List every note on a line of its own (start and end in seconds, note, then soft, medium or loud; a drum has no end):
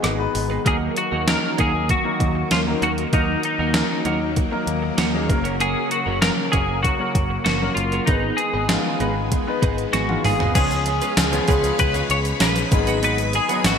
0.00 0.26 G#1 medium
0.00 5.26 D#3 medium
0.00 0.18 G#3 medium
0.00 0.63 G#3 medium
0.00 0.19 B3 medium
0.00 0.63 B3 medium
0.00 0.17 B3 medium
0.00 0.19 D#4 medium
0.00 0.17 D#4 medium
0.00 0.67 F#4 medium
0.00 0.20 B4 medium
0.00 closed hi-hat medium
0.04 0.17 G#4 medium
0.04 0.18 B4 medium
0.04 cross-stick loud
0.18 0.47 G#3 medium
0.18 0.47 B3 medium
0.18 0.47 D#4 medium
0.18 0.48 B4 medium
0.18 muted clean electric guitar stroke soft
0.34 0.57 G#1 medium
0.34 muted clean electric guitar stroke soft
0.34 open hi-hat medium
0.50 0.61 B3 soft
0.50 0.61 D#4 soft
0.50 0.61 G#4 medium
0.50 0.60 B4 medium
0.65 0.88 D#2 loud
0.65 1.03 F#3 medium
0.65 8.04 F#3 medium
0.65 1.03 A#3 medium
0.65 0.94 A#3 medium
0.65 8.04 A#3 medium
0.65 1.03 D#4 medium
0.65 0.94 D#4 medium
0.65 0.95 F#4 medium
0.65 0.76 G#4 loud
0.65 1.03 A#4 medium
0.65 0.95 A#4 medium
0.65 kick loud
0.65 closed hi-hat medium
0.97 1.29 F#4 medium
0.97 closed hi-hat medium
1.12 1.34 D#2 medium
1.12 1.23 A#3 soft
1.12 1.23 D#4 medium
1.12 1.23 F#4 soft
1.12 1.22 A#4 medium
1.26 1.46 F#3 medium
1.26 1.46 A#3 medium
1.26 1.46 D#4 medium
1.26 1.46 A#4 medium
1.26 1.60 A#4 medium
1.26 snare loud
1.26 closed hi-hat medium
1.43 muted clean electric guitar stroke soft
1.58 1.92 D#2 medium
1.58 1.86 F#3 medium
1.58 1.71 A#3 medium
1.58 1.86 A#3 medium
1.58 1.86 D#4 medium
1.58 1.72 D#4 medium
1.58 1.72 F#4 medium
1.58 1.90 G#4 medium
1.58 1.87 A#4 medium
1.58 1.72 A#4 medium
1.58 kick medium
1.58 closed hi-hat medium
1.73 muted clean electric guitar stroke soft
1.88 2.51 F#4 medium
1.88 muted clean electric guitar stroke soft
1.88 kick medium
1.88 closed hi-hat medium
2.04 2.42 F#3 medium
2.04 2.42 A#3 medium
2.04 2.42 D#4 medium
2.04 2.43 A#4 medium
2.04 muted clean electric guitar stroke soft
2.20 2.43 D#2 medium
2.20 kick medium
2.20 closed hi-hat medium
2.35 muted clean electric guitar stroke soft
2.51 2.74 D#2 medium
2.51 2.60 F4 medium
2.51 muted clean electric guitar stroke soft
2.51 snare loud
2.51 closed hi-hat medium
2.66 2.94 F#3 medium
2.66 2.95 A#3 medium
2.66 2.95 D#4 medium
2.66 2.95 A#4 medium
2.66 muted clean electric guitar stroke soft
2.82 3.04 D#2 medium
2.82 2.95 A#3 medium
2.82 2.96 D#4 medium
2.82 2.91 F#4 medium
2.82 2.96 F#4 medium
2.82 2.96 A#4 medium
2.82 closed hi-hat medium
2.98 3.09 A#3 medium
2.98 3.09 D#4 medium
2.98 3.08 F#4 medium
2.98 3.08 A#4 medium
2.98 closed hi-hat soft
3.12 3.35 D#2 loud
3.12 3.50 F#3 medium
3.12 3.50 A#3 medium
3.12 3.41 A#3 medium
3.12 3.51 D#4 medium
3.12 3.42 D#4 medium
3.12 3.44 D#4 medium
3.12 3.42 F#4 medium
3.12 3.51 A#4 medium
3.12 3.42 A#4 medium
3.12 kick loud
3.12 closed hi-hat medium
3.43 4.64 D#4 medium
3.43 muted clean electric guitar stroke soft
3.43 closed hi-hat medium
3.59 3.81 D#2 medium
3.59 3.71 A#3 soft
3.59 3.70 D#4 medium
3.59 3.70 F#4 medium
3.59 3.70 A#4 medium
3.74 3.93 F#3 medium
3.74 3.93 A#3 medium
3.74 3.93 D#4 medium
3.74 3.94 A#4 medium
3.74 snare loud
3.74 closed hi-hat medium
3.90 muted clean electric guitar stroke soft
4.05 4.39 D#2 medium
4.05 4.33 F#3 medium
4.05 4.33 A#3 medium
4.05 4.19 A#3 medium
4.05 4.34 D#4 medium
4.05 4.19 D#4 medium
4.05 4.19 F#4 medium
4.05 4.34 A#4 medium
4.05 4.19 A#4 medium
4.05 closed hi-hat medium
4.21 muted clean electric guitar stroke soft
4.36 muted clean electric guitar stroke soft
4.36 kick medium
4.36 closed hi-hat medium
4.51 4.89 F#3 medium
4.51 4.89 A#3 medium
4.51 4.90 D#4 medium
4.51 4.90 A#4 medium
4.51 muted clean electric guitar stroke soft
4.67 4.90 D#2 medium
4.67 closed hi-hat medium
4.82 muted clean electric guitar stroke soft
4.98 5.31 D#2 medium
4.98 5.11 A#3 medium
4.98 5.12 D#4 medium
4.98 5.12 F#4 medium
4.98 5.12 A#4 medium
4.98 snare loud
4.98 closed hi-hat medium
5.13 5.27 F#3 medium
5.13 5.28 A#3 medium
5.13 5.30 D#4 medium
5.13 5.30 G#4 medium
5.13 muted clean electric guitar stroke soft
5.29 5.74 F#1 medium
5.29 8.05 C#3 medium
5.29 6.03 F#3 medium
5.29 6.03 A#3 medium
5.29 6.04 C#4 medium
5.29 6.04 A#4 medium
5.29 muted clean electric guitar stroke soft
5.29 kick loud
5.29 closed hi-hat medium
5.44 5.56 A#3 medium
5.44 5.56 C#4 medium
5.44 5.55 F#4 medium
5.44 5.55 A#4 medium
5.44 closed hi-hat medium
5.59 5.88 A#3 medium
5.59 5.89 C#4 medium
5.59 5.89 F#4 medium
5.59 5.91 G#4 loud
5.59 5.89 A#4 medium
5.59 closed hi-hat medium
5.91 6.21 F#4 medium
5.91 muted clean electric guitar stroke soft
5.91 closed hi-hat medium
6.06 6.29 F#1 medium
6.06 6.18 A#3 medium
6.06 6.18 C#4 medium
6.06 6.17 F#4 medium
6.06 6.17 A#4 medium
6.22 6.41 F#3 medium
6.22 6.41 A#3 medium
6.22 6.41 C#4 medium
6.22 6.30 A#4 loud
6.22 6.41 A#4 medium
6.22 muted clean electric guitar stroke soft
6.22 snare loud
6.22 closed hi-hat medium
6.38 muted clean electric guitar stroke soft
6.52 6.87 F#1 medium
6.52 6.81 F#3 medium
6.52 6.66 A#3 medium
6.52 6.81 A#3 medium
6.52 6.81 C#4 medium
6.52 6.67 C#4 medium
6.52 6.67 F#4 medium
6.52 6.81 G#4 medium
6.52 6.82 A#4 medium
6.52 6.67 A#4 medium
6.52 kick medium
6.52 closed hi-hat medium
6.69 muted clean electric guitar stroke soft
6.83 7.43 F#4 loud
6.83 muted clean electric guitar stroke soft
6.83 kick medium
6.83 closed hi-hat medium
6.99 7.37 F#3 medium
6.99 7.37 A#3 medium
6.99 7.37 C#4 medium
6.99 7.37 A#4 medium
6.99 muted clean electric guitar stroke soft
7.15 7.37 F#1 medium
7.15 kick medium
7.15 closed hi-hat medium
7.30 muted clean electric guitar stroke soft
7.45 7.68 F#1 medium
7.45 7.59 A#3 medium
7.45 7.60 C#4 medium
7.45 7.74 F#4 medium
7.45 7.60 F#4 medium
7.45 7.60 A#4 medium
7.45 snare loud
7.45 closed hi-hat medium
7.61 7.89 F#3 medium
7.61 7.90 A#3 medium
7.61 7.90 C#4 medium
7.61 7.90 A#4 medium
7.61 muted clean electric guitar stroke soft
7.75 7.99 F#1 loud
7.75 8.08 F4 medium
7.75 muted clean electric guitar stroke soft
7.75 closed hi-hat medium
7.92 8.04 A#3 soft
7.92 8.03 C#4 soft
7.92 8.03 F#4 medium
7.92 8.03 A#4 medium
7.92 closed hi-hat soft
8.06 8.30 G#1 loud
8.06 10.53 D#3 medium
8.06 8.45 G#3 medium
8.06 10.53 G#3 medium
8.06 8.36 B3 medium
8.06 8.45 B3 medium
8.06 10.53 B3 medium
8.06 8.39 D#4 medium
8.06 8.45 D#4 medium
8.06 8.36 D#4 medium
8.06 8.37 G#4 medium
8.06 8.46 B4 medium
8.06 8.37 B4 medium
8.06 kick loud
8.06 closed hi-hat medium
8.37 9.57 G#4 medium
8.37 muted clean electric guitar stroke soft
8.37 closed hi-hat medium
8.53 8.76 G#1 medium
8.53 8.65 B3 medium
8.53 8.65 D#4 medium
8.53 8.64 G#4 medium
8.53 8.64 B4 medium
8.69 8.88 G#3 medium
8.69 8.88 B3 medium
8.69 8.89 D#4 medium
8.69 8.89 F4 medium
8.69 muted clean electric guitar stroke soft
8.69 snare loud
8.69 closed hi-hat medium
8.85 muted clean electric guitar stroke soft
9.00 9.34 G#1 medium
9.00 9.29 G#3 medium
9.00 9.14 B3 medium
9.00 9.29 B3 medium
9.00 9.14 D#4 medium
9.00 9.29 D#4 medium
9.00 9.15 G#4 medium
9.00 9.29 B4 medium
9.00 9.15 B4 medium
9.00 closed hi-hat medium
9.16 muted clean electric guitar stroke soft
9.32 muted clean electric guitar stroke soft
9.32 kick medium
9.32 closed hi-hat medium
9.47 9.84 G#3 medium
9.47 9.85 B3 medium
9.47 9.85 D#4 medium
9.47 9.85 B4 medium
9.47 muted clean electric guitar stroke soft
9.62 9.85 G#1 medium
9.62 9.76 B3 medium
9.62 9.76 D#4 medium
9.62 9.76 G#4 medium
9.62 9.77 B4 medium
9.62 9.92 B5 medium
9.62 kick medium
9.62 closed hi-hat medium
9.78 muted clean electric guitar stroke soft
9.78 closed hi-hat medium
9.93 10.16 G#1 medium
9.93 10.07 B3 medium
9.93 10.07 D#4 medium
9.93 10.25 F#4 medium
9.93 10.07 G#4 medium
9.93 10.08 B4 medium
9.93 10.08 G#5 medium
9.93 snare medium
9.93 closed hi-hat medium
10.09 10.37 G#3 medium
10.09 10.37 B3 medium
10.09 10.37 D#4 medium
10.09 10.37 F4 loud
10.09 10.23 F#5 medium
10.09 muted clean electric guitar stroke soft
10.09 high tom medium
10.24 10.46 G#1 medium
10.24 10.54 G#4 medium
10.24 10.53 F5 medium
10.24 muted clean electric guitar stroke soft
10.24 mid tom medium
10.24 open hi-hat medium
10.40 10.51 B3 soft
10.40 10.51 D#4 medium
10.40 10.51 G#4 medium
10.40 10.50 B4 medium
10.40 floor tom medium
10.54 11.00 C#2 loud
10.54 10.86 C#3 medium
10.54 11.02 F3 medium
10.54 11.02 G#3 medium
10.54 10.69 G#3 medium
10.54 10.87 G#3 medium
10.54 11.02 B3 medium
10.54 11.02 C#4 medium
10.54 10.69 C#4 medium
10.54 10.84 C#4 loud
10.54 10.69 F4 loud
10.54 11.79 G#4 loud
10.54 11.02 G#4 medium
10.54 13.78 G#4 medium
10.54 10.70 B4 medium
10.54 12.70 C#5 medium
10.54 12.70 F5 medium
10.54 13.78 B5 loud
10.54 kick loud
10.54 closed hi-hat medium
10.54 crash medium
10.54 shaker medium
10.71 muted clean electric guitar stroke soft
10.71 closed hi-hat medium
10.71 shaker soft
10.86 11.79 G#3 soft
10.86 11.79 C#4 medium
10.86 muted clean electric guitar stroke soft
10.86 closed hi-hat medium
11.02 11.13 G#3 medium
11.02 11.13 C#4 medium
11.02 11.13 F4 medium
11.02 11.12 B4 medium
11.02 closed hi-hat medium
11.02 shaker soft
11.17 11.40 C#2 loud
11.17 muted clean electric guitar stroke soft
11.17 snare loud
11.17 closed hi-hat medium
11.17 tambourine medium
11.17 shaker medium
11.31 11.41 F3 medium
11.31 11.42 G#3 medium
11.31 11.42 B3 medium
11.31 11.42 C#4 medium
11.31 11.42 G#4 loud
11.31 muted clean electric guitar stroke soft
11.31 closed hi-hat medium
11.31 shaker soft
11.47 11.71 C#2 loud
11.47 12.23 F3 medium
11.47 12.23 G#3 medium
11.47 11.61 G#3 medium
11.47 12.23 B3 medium
11.47 12.23 C#4 medium
11.47 11.62 C#4 medium
11.47 11.62 F4 medium
11.47 12.23 G#4 loud
11.47 11.62 B4 loud
11.47 kick loud
11.47 closed hi-hat medium
11.47 shaker soft
11.64 11.75 G#3 medium
11.64 11.75 C#4 medium
11.64 11.74 F4 medium
11.64 11.74 B4 medium
11.64 closed hi-hat medium
11.64 shaker soft
11.78 12.01 C#2 loud
11.78 12.40 C#3 medium
11.78 12.42 G#3 medium
11.78 12.42 C#4 medium
11.78 12.10 B4 loud
11.78 kick medium
11.78 closed hi-hat medium
11.78 shaker medium
11.94 12.09 G#3 medium
11.94 12.08 C#4 medium
11.94 12.08 F4 medium
11.94 12.08 B4 loud
11.94 closed hi-hat medium
11.94 shaker medium
12.09 12.32 C#2 medium
12.09 12.19 C#5 loud
12.09 muted clean electric guitar stroke soft
12.09 closed hi-hat medium
12.25 muted clean electric guitar stroke soft
12.25 closed hi-hat medium
12.25 shaker medium
12.40 12.63 A#1 medium
12.40 12.72 C#3 medium
12.40 12.54 G#3 medium
12.40 12.70 G#3 medium
12.40 12.54 C#4 medium
12.40 12.73 C#4 medium
12.40 12.55 F4 medium
12.40 13.03 B4 loud
12.40 12.55 B4 loud
12.40 snare loud
12.40 closed hi-hat medium
12.40 tambourine medium
12.40 shaker medium
12.56 muted clean electric guitar stroke soft
12.56 closed hi-hat medium
12.56 shaker medium
12.71 13.39 G#1 loud
12.71 13.35 G#2 medium
12.71 13.35 D#3 medium
12.71 13.33 F#3 medium
12.71 13.33 G#3 medium
12.71 13.32 G#3 medium
12.71 12.78 A#3 medium
12.71 13.34 D#4 medium
12.71 13.34 G#4 medium
12.71 13.78 D#5 medium
12.71 13.78 G#5 medium
12.71 muted clean electric guitar stroke soft
12.71 kick loud
12.71 closed hi-hat medium
12.71 shaker medium
12.78 13.37 B3 medium
12.87 12.99 B3 medium
12.87 12.98 D#4 medium
12.87 12.98 F#4 medium
12.87 12.98 B4 medium
12.87 closed hi-hat medium
12.87 shaker medium
13.02 13.16 B3 medium
13.02 13.16 D#4 medium
13.02 13.17 F#4 medium
13.02 13.35 B4 loud
13.02 13.17 B4 medium
13.02 closed hi-hat medium
13.02 shaker medium
13.18 muted clean electric guitar stroke soft
13.18 closed hi-hat medium
13.18 shaker medium
13.33 13.78 D#3 soft
13.33 13.78 G#3 medium
13.33 13.66 G#4 loud
13.33 muted clean electric guitar stroke soft
13.33 closed hi-hat medium
13.49 13.78 F#3 medium
13.49 13.78 G#3 medium
13.49 13.78 B3 medium
13.49 13.60 B3 medium
13.49 13.78 D#4 medium
13.49 13.60 D#4 medium
13.49 13.60 F#4 medium
13.49 13.78 G#4 medium
13.49 13.59 B4 medium
13.49 closed hi-hat medium
13.49 shaker soft
13.64 13.78 G#1 loud
13.64 13.78 F#4 loud
13.64 snare loud
13.64 closed hi-hat medium
13.64 tambourine medium
13.64 shaker medium